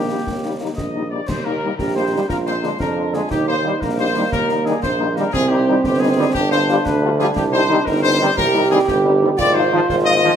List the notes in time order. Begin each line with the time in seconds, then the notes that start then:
Already playing: A#1 D#3 A#3 G4
0.09 G3 A#3 D#4
0.27 D#2, concert bass drum, snare
0.44 G3 A#3 D#4
0.61 G3 A#3 D#4
0.76 A#1 D#5, concert bass drum, snare
0.95 G3 A#3 D#4
1.11 G3 A#3 D#4 D5
1.28 D#2 C5, concert bass drum, snare, crash
1.45 G3 A#3 D#4 A#4
1.62 D#3 G3 A#3 D#4
1.78 A#1 G4 A#4, concert bass drum, snare
1.95 G3 A#3 D#4 C5
2.13 D#3 G3 A#3 D#4
2.29 A#1 F4 A#4, concert bass drum, snare
2.46 G#3 A#3 D4 C5, snare
2.63 D3 G#3 A#3 D4, snare
2.80 F2 D4 A#4, concert bass drum, snare
2.97 G#3 A#3 D4
3.14 D3 G#3 A#3 D4 G#4, snare
3.31 D#2 D#4 G4, concert bass drum, snare
3.48 G3 A#3 D#4 C5
3.64 D#3 G3 A#3 D#4
3.81 A#1 A#3 A#4, concert bass drum, snare
3.98 G3 A#3 D#4 C5
4.15 D#3 G3 A#3 D#4
4.32 D#2 A#4, concert bass drum, snare
4.49 G3 A#3 D#4, snare
4.66 D#3 G3 A#3 D#4 G#4, snare
4.82 A#1 C5, concert bass drum, snare
5.00 G3 A#3 D#4
5.16 D#3 G3 A#3 D#4 A#4, snare
5.33 C2 C4 G#4, concert bass drum, snare, crash
5.49 G3 C4 D#4 G4
5.67 D#3 G3 C4 D#4
5.84 G1 G4, concert bass drum, snare
6.00 G3 C4 D#4 G#4
6.17 D#3 G3 C4 D#4
6.33 G1 D4 G4, concert bass drum, snare
6.51 G3 D4 F4 C5, snare
6.68 F3 G3 D4 F4, snare
6.85 D2 B4, concert bass drum, snare
7.02 G3 D4 F4
7.19 F3 G3 D4 F4 G#4, snare
7.36 C2 G4, concert bass drum, snare
7.53 G3 C4 D#4 C5
7.68 D#3 G3 C4 D#4
7.86 G1 D#4 A#4, concert bass drum, snare
8.03 G3 C4 D#4 C5
8.19 D#3 G3 C4 D#4
8.37 C2 G4 A#4, concert bass drum, snare
8.54 G3 C4 D#4
8.71 D#3 G3 C4 D#4 G#4
8.88 G1 G4, concert bass drum, snare
9.04 G3 C4 D#4
9.21 D#3 G3 C4 D#4
9.38 G#1 F4 D5, concert bass drum, snare, crash
9.55 F3 D#4 F4 C5
9.72 D#3 F3 D#4 F4
9.88 G#1 C5, concert bass drum, snare
10.05 F3 D#4 F4 D#5
10.22 D#3 F3 D#4 F4